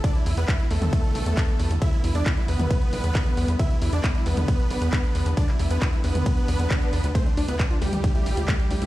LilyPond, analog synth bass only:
\new Staff \with { instrumentName = "Analog synth bass" } { \clef bass \time 4/4 \key e \phrygian \tempo 4 = 135 r8 e,16 e,16 r8 e,16 e,16 r8 b,,16 e,16 r8 e,16 e,16 | r8 e,16 e,16 r8 e,16 e,16 r8 b,,16 e,16 r8 e,16 e,16 | r8 e,16 e,16 r8 e,16 e,16 r8 b,,16 e,16 r8 e,16 e,16 | r8 e,16 e,16 r8 e,16 e,16 r8 e,16 e,16 r8 e,16 d,16 |
r8 d,16 d,16 r8 d,16 d,16 r8 a,,16 d,16 r8 d,16 d,16 | }